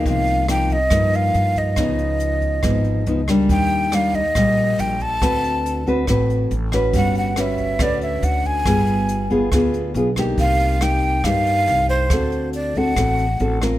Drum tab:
HH |xxxxxxxx|xxxxxxxx|xxxxxxxx|xxxxxxxx|
SD |--r-r---|r---r--r|--r-r---|r---r--r|
BD |o--oo--o|o--oo--o|o--oo--o|o--oo--o|

HH |xxxxxxxx|xxxxxxxx|xxxxxxxx|xxxxxxxx|
SD |--r-r---|r---r--r|--r-r---|r---r--r|
BD |o--oo--o|o--oo--o|o--oo--o|o--oo--o|